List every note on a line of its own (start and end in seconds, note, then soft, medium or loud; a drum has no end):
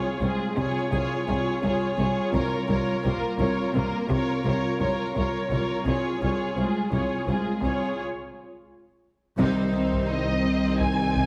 0.00 0.20 F4 soft
0.00 0.22 G#4 soft
0.00 0.88 C5 soft
0.00 0.21 C#5 soft
0.00 0.88 C6 soft
0.20 0.28 C2 soft
0.20 0.30 C2 soft
0.20 0.57 G#3 soft
0.20 0.43 C4 soft
0.20 0.56 F4 soft
0.20 0.56 G#4 soft
0.56 0.65 C2 soft
0.56 0.78 C3 medium
0.56 0.91 F4 soft
0.56 0.90 G#4 soft
0.56 0.91 C#5 soft
0.91 1.01 C2 soft
0.91 1.13 C3 soft
0.91 1.26 F4 soft
0.91 1.25 G#4 soft
0.91 1.26 C#5 soft
0.91 3.00 D#6 soft
1.26 1.36 C2 soft
1.26 1.37 C2 soft
1.26 1.49 C3 soft
1.26 1.62 F4 soft
1.26 1.61 G#4 soft
1.26 1.62 C#5 soft
1.62 1.72 C2 soft
1.62 1.84 C3 soft
1.62 1.98 F4 soft
1.62 1.97 G#4 soft
1.62 1.98 C#5 soft
1.98 2.06 C2 soft
1.98 2.07 C2 soft
1.98 2.19 C3 soft
1.98 2.33 F4 soft
1.98 2.33 G#4 soft
1.98 2.33 C#5 soft
2.33 2.42 C2 medium
2.33 2.43 C2 medium
2.33 2.54 C3 medium
2.33 2.68 F4 soft
2.33 2.68 A#4 medium
2.33 2.67 C#5 soft
2.69 2.77 C2 soft
2.69 2.79 C2 soft
2.69 2.90 C3 soft
2.69 3.04 F4 soft
2.69 3.04 A#4 soft
2.69 3.03 C#5 soft
3.04 3.13 C2 soft
3.04 3.13 C2 medium
3.04 3.39 A#3 soft
3.04 3.25 C4 soft
3.04 3.38 F4 soft
3.04 3.39 A#4 soft
3.39 3.48 C2 medium
3.39 3.48 C2 soft
3.39 3.60 C3 soft
3.39 3.73 F4 soft
3.39 3.75 A#4 soft
3.39 3.74 C#5 soft
3.74 3.82 C2 medium
3.74 3.83 C2 medium
3.74 4.09 A#3 soft
3.74 3.96 C4 soft
3.74 4.09 F4 soft
3.74 4.08 A#4 soft
4.10 4.18 C2 soft
4.10 4.32 C3 medium
4.10 4.45 F4 soft
4.10 4.45 A#4 soft
4.10 4.44 C#5 soft
4.45 4.53 C2 medium
4.45 4.54 C2 medium
4.45 4.67 C3 soft
4.45 4.79 F4 soft
4.45 4.80 A#4 soft
4.45 4.79 C#5 soft
4.80 4.89 C2 soft
4.80 4.90 C2 soft
4.80 5.02 C3 soft
4.80 5.15 F4 soft
4.80 5.16 A#4 soft
4.80 5.15 C#5 soft
5.16 5.24 C2 soft
5.16 5.25 C2 soft
5.16 5.37 C3 soft
5.16 5.50 F4 soft
5.16 5.52 A#4 soft
5.16 5.49 C#5 soft
5.50 5.60 C2 soft
5.50 5.72 C3 soft
5.50 5.85 F4 soft
5.50 5.87 A#4 soft
5.50 5.85 C#5 soft
5.86 5.95 C2 soft
5.86 6.07 C3 soft
5.86 6.20 F4 soft
5.86 6.21 G#4 soft
5.86 6.20 C#5 soft
6.21 6.30 C2 soft
6.21 6.42 C3 soft
6.21 6.56 F4 soft
6.21 6.57 G#4 soft
6.21 6.56 C#5 soft
6.55 6.65 C2 soft
6.55 6.66 C2 soft
6.55 6.92 G#3 soft
6.55 6.77 C4 soft
6.55 6.91 F4 soft
6.55 6.92 G#4 soft
6.91 7.00 C2 soft
6.91 7.01 C2 soft
6.91 7.13 C3 soft
6.91 7.26 F4 soft
6.91 7.27 G#4 soft
6.91 7.27 C#5 soft
7.26 7.35 C2 soft
7.26 7.37 C2 soft
7.26 7.63 G#3 soft
7.26 7.48 C4 soft
7.26 7.62 F4 soft
7.26 7.62 G#4 soft
7.61 7.71 C2 soft
7.61 7.73 C2 soft
7.61 7.83 C3 soft
7.61 7.98 F4 soft
7.61 7.98 G#4 soft
7.61 7.98 C#5 soft
9.38 11.26 C2 medium
9.38 9.60 C3 medium
9.38 11.26 D#3 medium
9.38 11.26 G3 medium
9.38 11.26 C4 medium
9.38 11.26 C4 soft
9.38 11.26 D#4 soft
9.38 11.26 C5 medium
9.38 taiko medium
9.74 9.96 C3 soft
9.74 11.26 D#6 soft
9.93 taiko medium
10.09 10.31 C4 soft
10.09 10.77 D#5 medium
10.46 10.67 C3 soft
10.80 11.02 C4 soft
10.80 11.26 G#5 medium
10.80 taiko medium
11.16 11.26 C3 soft
11.16 taiko medium